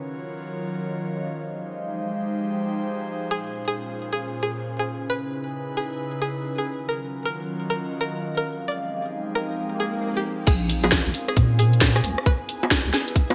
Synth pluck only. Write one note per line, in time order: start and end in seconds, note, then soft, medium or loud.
3.31 3.52 G#4 loud
3.68 3.94 G#4 medium
4.13 4.33 G#4 medium
4.43 4.64 G#4 medium
4.79 5.00 G#4 medium
5.10 5.26 B4 medium
5.77 6.06 G#4 medium
6.22 6.43 G#4 medium
6.58 6.79 G#4 medium
6.89 7.10 A#4 medium
7.26 7.52 A#4 medium
7.70 7.91 A#4 medium
8.01 8.22 A#4 medium
8.37 8.58 A#4 medium
8.68 8.84 D5 medium
9.35 9.65 A#4 medium
9.80 10.01 G#4 medium
10.17 10.37 G4 medium
10.47 10.68 G#4 loud
10.84 11.10 G#4 loud
11.29 11.49 G#4 medium
11.59 11.80 G#4 loud
11.96 12.16 G#4 medium
12.26 12.42 B4 medium
12.93 13.23 G#4 medium